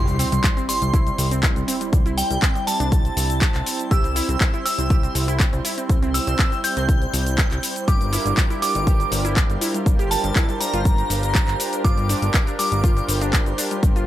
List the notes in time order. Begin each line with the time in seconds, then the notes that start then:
Already playing: C2 G3 C4 E4 C5 C6, sub drop
0.07 G3, closed hi-hat, shaker
0.19 C4, open hi-hat, shaker
0.32 C2 G3, closed hi-hat, shaker
0.44 G3, kick, clap, closed hi-hat, shaker
0.57 C4, closed hi-hat, shaker
0.69 G3 C6, open hi-hat, shaker
0.82 C2 G3, closed hi-hat, shaker
0.94 E4, kick, closed hi-hat, shaker
1.07 G3, closed hi-hat, shaker
1.18 C2 G3, open hi-hat, shaker
1.31 C4, closed hi-hat, shaker
1.43 G3, kick, clap, closed hi-hat, shaker
1.56 C2 G3, closed hi-hat, shaker
1.68 C4, open hi-hat, shaker
1.81 G3, closed hi-hat, shaker
1.93 C2 G3, kick, closed hi-hat, shaker
2.06 E4, closed hi-hat, shaker
2.18 G3 G5, open hi-hat, shaker
2.31 C2 G3, closed hi-hat, shaker
2.42 C4, kick, clap, closed hi-hat, shaker
2.55 G3, closed hi-hat, shaker
2.67 G3 A5, open hi-hat, shaker
2.80 C2 D4, closed hi-hat, shaker
2.92 kick, closed hi-hat, shaker
3.05 closed hi-hat, shaker
3.17 C2, open hi-hat, shaker
3.30 closed hi-hat, shaker
3.42 kick, clap, closed hi-hat, shaker
3.54 C2, clap, closed hi-hat, shaker
3.66 open hi-hat, shaker
3.79 closed hi-hat, shaker
3.91 C2 G4 E6, kick, closed hi-hat, shaker
4.04 C4, closed hi-hat, shaker
4.16 E4, open hi-hat, shaker
4.29 C2 C4, closed hi-hat, shaker
4.41 kick, clap, closed hi-hat, shaker
4.54 E4, closed hi-hat, shaker
4.65 C4 E6, open hi-hat, shaker
4.78 C2 C4, closed hi-hat, shaker
4.90 G4, kick, closed hi-hat, shaker
5.03 C4, closed hi-hat, shaker
5.15 C2 C4, open hi-hat, shaker
5.28 E4, closed hi-hat, shaker
5.40 C4, kick, clap, closed hi-hat, shaker
5.53 C2 C4, closed hi-hat, shaker
5.65 E4, open hi-hat, shaker
5.78 C4, closed hi-hat, shaker
5.89 C2 C4, kick, closed hi-hat, shaker
6.02 C4, closed hi-hat, shaker
6.14 C4 E6, open hi-hat, shaker
6.27 C2 C4, closed hi-hat, shaker
6.39 C4, kick, clap, closed hi-hat, shaker
6.52 C4, closed hi-hat, shaker
6.64 C4 G6, open hi-hat, shaker
6.77 C2 C4, closed hi-hat, shaker
6.89 kick, closed hi-hat, shaker
7.02 closed hi-hat, shaker
7.13 C2, open hi-hat, shaker
7.26 closed hi-hat, shaker
7.38 kick, clap, closed hi-hat, shaker
7.51 C2, clap, closed hi-hat, shaker
7.63 open hi-hat, shaker
7.76 closed hi-hat, shaker
7.88 G1 D4 F4 G4 A#4 D6, kick, closed hi-hat, shaker
8.01 G3, closed hi-hat, shaker
8.13 E4, open hi-hat, shaker
8.26 G1 G3, closed hi-hat, shaker
8.37 G3, kick, clap, closed hi-hat, shaker
8.50 E4, closed hi-hat, shaker
8.62 G3 D6, open hi-hat, shaker
8.75 G1 G3, closed hi-hat, shaker
8.87 G4, kick, closed hi-hat, shaker
9.00 G3, closed hi-hat, shaker
9.12 G1 G3, open hi-hat, shaker
9.25 E4, closed hi-hat, shaker
9.37 G3, kick, clap, closed hi-hat, shaker
9.50 G1 G3, closed hi-hat, shaker
9.61 E4, open hi-hat, shaker
9.74 G3, closed hi-hat, shaker
9.86 G1 G3, kick, closed hi-hat, shaker
9.99 G4, closed hi-hat, shaker
10.11 G3 A5, open hi-hat, shaker
10.24 G1 G3, closed hi-hat, shaker
10.36 E4, kick, clap, closed hi-hat, shaker
10.49 G3, closed hi-hat, shaker
10.60 G3 A#5, open hi-hat, shaker
10.73 G1 F4, closed hi-hat, shaker
10.85 kick, closed hi-hat, shaker
10.98 closed hi-hat, shaker
11.10 G1, open hi-hat, shaker
11.23 closed hi-hat, shaker
11.35 kick, clap, closed hi-hat, shaker
11.48 G1, clap, closed hi-hat, shaker
11.60 open hi-hat, shaker
11.73 closed hi-hat, shaker
11.84 G1 F4 D6, kick, closed hi-hat, shaker
11.98 G3, closed hi-hat, shaker
12.09 D4, open hi-hat, shaker
12.22 G1 G3, closed hi-hat, shaker
12.34 G3, kick, clap, closed hi-hat, shaker
12.47 D4, closed hi-hat, shaker
12.59 G3 D6, open hi-hat, shaker
12.72 G1 G3, closed hi-hat, shaker
12.84 F4, kick, closed hi-hat, shaker
12.97 G3, closed hi-hat, shaker
13.08 G1 G3, open hi-hat, shaker
13.21 D4, closed hi-hat, shaker
13.33 G3, kick, clap, closed hi-hat, shaker
13.46 G1 G3, closed hi-hat, shaker
13.58 D4, open hi-hat, shaker
13.71 G3, closed hi-hat, shaker
13.83 G1, kick, closed hi-hat, shaker
13.96 F4, closed hi-hat, shaker